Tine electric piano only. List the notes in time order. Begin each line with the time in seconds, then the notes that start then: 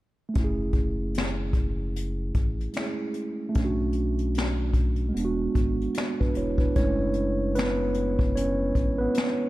0.29 A3
0.34 C#4
0.39 E4
0.44 G#4
2.73 G#3 C#4
2.78 A3 E4 G#4
3.49 A3
3.54 C#4
3.59 D4
3.65 F#4
5.09 G#3
5.14 B3
5.20 D4
5.25 F#4
6.20 D4 B4
6.37 E4 C#5
6.61 D4 B4
6.76 G#3 A3 C#4 E4 C#5
7.55 B3 B4
8.35 C#4 C#5
8.98 B3 B4